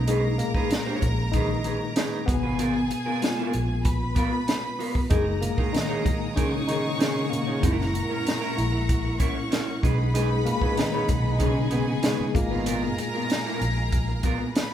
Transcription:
Already playing: B1 G#3 C#4 D#4 A#4 A#5
0.00 A#3
0.07 G#3 D#4 G#4 B4, closed hi-hat
0.24 muted clean electric guitar stroke
0.38 A#2 A#3, muted clean electric guitar stroke, closed hi-hat
0.54 D#4 G#4 B4, kick
0.71 muted clean electric guitar stroke, snare, closed hi-hat
0.86 D#4 G#4 C#5
1.02 A#1, muted clean electric guitar stroke, kick, closed hi-hat
1.19 muted clean electric guitar stroke
1.32 D#3 D#4 G#4, kick, closed hi-hat
1.36 B4
1.50 muted clean electric guitar stroke
1.64 D#4 G#4 B4, closed hi-hat
1.81 muted clean electric guitar stroke
1.96 D#4 G#4 B4, snare, closed hi-hat
2.26 G#1 B2 B3 G#4 G#5, muted clean electric guitar stroke, kick, closed hi-hat
2.43 B3 F4 B4
2.59 B3 F4 A#4, closed hi-hat
2.75 muted clean electric guitar stroke
2.91 muted clean electric guitar stroke, closed hi-hat
3.06 B3 F4 A#4
3.21 G#3 B3 F4, muted clean electric guitar stroke, snare, closed hi-hat
3.38 B3 F4 A#4
3.53 A#1, muted clean electric guitar stroke, closed hi-hat
3.69 muted clean electric guitar stroke
3.85 B4 B5, kick, closed hi-hat
4.00 muted clean electric guitar stroke
4.15 B3 F4 A#4, kick, closed hi-hat
4.31 muted clean electric guitar stroke
4.47 muted clean electric guitar stroke, snare, closed hi-hat
4.64 muted clean electric guitar stroke
4.79 B3 F4 A#4, open hi-hat
4.94 muted clean electric guitar stroke, kick
5.10 F#1 G#3 A#3 D#4 G#4 A#4 F#5 G#5 A#5 D#6, kick, closed hi-hat
5.26 muted clean electric guitar stroke
5.42 A#2 A#3, muted clean electric guitar stroke, closed hi-hat
5.57 D#4 G#4 A#4, kick
5.73 D#3 D#4, muted clean electric guitar stroke, snare, closed hi-hat
5.89 D#4 G#4 C#5
6.05 G#3 A#3 D#4, muted clean electric guitar stroke, kick, closed hi-hat
6.21 muted clean electric guitar stroke
6.36 C#3 C#4 D#4 G#4 A#4 C#5 C#6, kick, closed hi-hat
6.52 muted clean electric guitar stroke
6.68 D#3 D#4 G#4 A#4, closed hi-hat
6.84 muted clean electric guitar stroke
6.99 C#3 C#4 D#4 G#4 A#4, snare, closed hi-hat
7.30 A#2 A#3, muted clean electric guitar stroke, closed hi-hat
7.47 D#4 G#4 C#5
7.62 F#1 G#3 A#3 C#4 E4 A#4 E5 A#5 C#6, kick, closed hi-hat
7.78 muted clean electric guitar stroke, snare
7.94 muted clean electric guitar stroke, closed hi-hat
8.09 C#4 E4 A#4
8.25 muted clean electric guitar stroke, snare, closed hi-hat
8.40 C#4 E4 A#4
8.57 A#1 G#3 A#3 E4, muted clean electric guitar stroke, closed hi-hat
8.72 muted clean electric guitar stroke
8.89 kick, closed hi-hat
9.04 muted clean electric guitar stroke
9.19 C#4 E4 A#4 C#5 C#6, kick, closed hi-hat
9.36 muted clean electric guitar stroke
9.51 C#4 E4 A#4, snare, closed hi-hat
9.67 muted clean electric guitar stroke
9.82 B1 G#3 C#4 D#4 G#4 B4 D#5 B5, kick, closed hi-hat
9.99 muted clean electric guitar stroke
10.14 G#3 D#4 G#4 B4, closed hi-hat
10.31 muted clean electric guitar stroke
10.45 A#2 A#3, muted clean electric guitar stroke, closed hi-hat
10.61 D#4 G#4 B4, kick
10.77 D#3 D#4, muted clean electric guitar stroke, snare, closed hi-hat
10.93 D#4 G#4 C#5
11.08 B1, muted clean electric guitar stroke, kick, closed hi-hat
11.24 muted clean electric guitar stroke
11.32 D#4
11.39 C#3 C#4 D#4 G#4 B4 G#5, kick, closed hi-hat
11.55 muted clean electric guitar stroke
11.70 B2 B3 D#4 G#4 B4, closed hi-hat
11.87 muted clean electric guitar stroke
12.03 G#3 D#4 G#4 B4, snare, closed hi-hat
12.20 muted fingered electric bass stroke
12.34 G#1 A#2 G#3 A#3 D#4 F4 A#4 D#5 F5 G#5 A#5, muted clean electric guitar stroke, kick, closed hi-hat
12.51 B3 F4 B4
12.66 B3 F4 A#4, closed hi-hat
12.83 muted clean electric guitar stroke
12.98 muted clean electric guitar stroke, closed hi-hat
13.14 B3 F4 A#4
13.30 muted clean electric guitar stroke, snare, closed hi-hat
13.45 B3 F4 A#4
13.61 A#1, muted clean electric guitar stroke, closed hi-hat
13.77 muted clean electric guitar stroke
13.92 kick, closed hi-hat
14.09 muted clean electric guitar stroke
14.23 B3 F4 A#4, kick, closed hi-hat
14.40 muted clean electric guitar stroke
14.55 B4 B5, muted clean electric guitar stroke, snare, closed hi-hat
14.71 muted clean electric guitar stroke

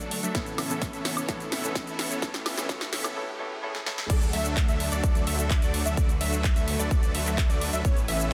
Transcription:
Already playing: D3 A3 D4 F#4 A4, riser
0.00 F#3 A3 D4 A4 D5, shaker
0.11 open hi-hat
0.23 F#3 A3 D4 A4 E5, closed hi-hat, shaker
0.34 A2 C#3 E3 B3 C#4 E4 A4 C#5, kick, snare, closed hi-hat, shaker
0.46 closed hi-hat, shaker
0.58 E3 B3 C#4 A4 E5, snare, open hi-hat, high woodblock
0.69 A2 B3 C#4 E4 A4, closed hi-hat, shaker
0.82 kick, snare, closed hi-hat, shaker
0.93 E3 B3 C#4 A4 E5, closed hi-hat, shaker
1.05 snare, open hi-hat
1.17 E3 B3 C#4 A4 C#5, high woodblock, shaker
1.28 A2 E3 B3 C#4 E4 A4 C#5, kick, snare, closed hi-hat, shaker
1.40 closed hi-hat, shaker
1.52 E3 B3 C#4 A4 E5, snare, open hi-hat
1.62 A2 B3 C#4 E4 A4, closed hi-hat, shaker
1.75 kick, snare, closed hi-hat, shaker
1.87 E3 B3 C#4 A4 E5, closed hi-hat, shaker
1.99 snare, open hi-hat
2.11 E3 B3 C#4 A4 C#5, closed hi-hat, shaker
2.22 A2 B3 C#4 E4 G4 A4, kick, snare, closed hi-hat, shaker
2.34 snare, closed hi-hat, shaker
2.46 E3 B3 C#4 A4 E5, snare, open hi-hat, high woodblock
2.56 A2 B3 C#4 E4 A4, snare, closed hi-hat, shaker
2.69 A2 E3 B3 C#4 E4 A4 C#5, kick, snare, closed hi-hat, shaker
2.81 snare, closed hi-hat, shaker
2.93 E3 B3 C#4 A4 E5, snare, open hi-hat
3.03 A2 B3 C#4 E4 A4, snare, high woodblock, shaker
3.15 A2 B3 C#4 E4 A4
3.39 A2 B3 C#4 E4 A4
3.62 A2 B3 C#4 E4 A4
3.75 snare
3.86 A2 B3 C#4 E4 A4, snare
3.98 snare
4.10 D2 D3 F#3 A3 D4 F#4 A4 D5, kick, closed hi-hat, crash, shaker
4.22 closed hi-hat, shaker
4.33 D2 F#3 A3 D4 A4 E5, open hi-hat
4.45 closed hi-hat, shaker
4.57 kick, clap, closed hi-hat, shaker
4.68 D2 F#3 A3 D4 A4 E5, closed hi-hat, shaker
4.80 open hi-hat
4.92 D2 F#3 A3 D4 A4 D5, closed hi-hat, shaker
5.04 D2 F#3 A3 D4 A4 D5, kick, closed hi-hat, shaker
5.15 closed hi-hat, shaker
5.27 D2 F#3 A3 D4 A4 E5, open hi-hat
5.39 closed hi-hat, shaker
5.50 kick, clap, closed hi-hat, shaker
5.62 D2 F#3 A3 D4 A4 D5, closed hi-hat, shaker
5.74 open hi-hat
5.85 D2 F#3 A3 D4 A4 E5, closed hi-hat, shaker
5.97 D2 A3 A4 B4 D5, kick, closed hi-hat, shaker
6.09 closed hi-hat, shaker
6.21 D2 F#3 A3 D4 A4 E5, open hi-hat
6.33 closed hi-hat, shaker
6.44 kick, clap, closed hi-hat, shaker
6.56 D2 F#3 A3 D4 A4 E5, closed hi-hat, shaker
6.68 open hi-hat
6.79 D2 F#3 A3 D4 A4 D5, closed hi-hat, shaker
6.91 D2 F#3 A3 D4 A4 D5, kick, closed hi-hat, shaker
7.03 closed hi-hat, shaker
7.14 D2 F#3 A3 D4 A4 E5, open hi-hat
7.26 clap, closed hi-hat, shaker
7.38 kick, clap, closed hi-hat, shaker
7.50 D2 F#3 A3 D4 A4 D5, closed hi-hat, shaker
7.61 open hi-hat
7.73 D2 F#3 A3 D4 A4 E5, closed hi-hat, shaker
7.85 A1 C#3 E3 B3 C#4 E4 A4 C#5, kick, closed hi-hat, shaker
7.97 closed hi-hat, shaker
8.08 A1 E3 B3 C#4 A4 E5, open hi-hat
8.21 shaker

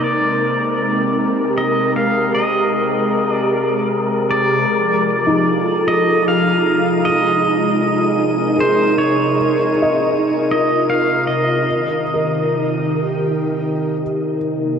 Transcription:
Already playing: C3 A#3 C4 D#4 A#4 A#5
0.03 G#3 D5
0.67 G4
1.14 A#4
1.46 G#4
1.58 D#5
1.96 F5
2.35 D#5
3.33 D5
4.31 D5
4.68 C3 F3 D#4 D#7
5.11 F4
5.27 D#4
5.43 A4
5.88 D#5
6.28 F5
7.04 G#3 D#5
7.65 D#4
8.08 A#4
8.56 G#4
8.60 C5
8.98 C#5
9.82 D#5
10.39 F4
10.51 D#5
10.90 F5
11.27 D#5
11.66 D#3
12.07 D#4
12.14 A#4
12.58 G4
14.01 C3
14.54 A#3

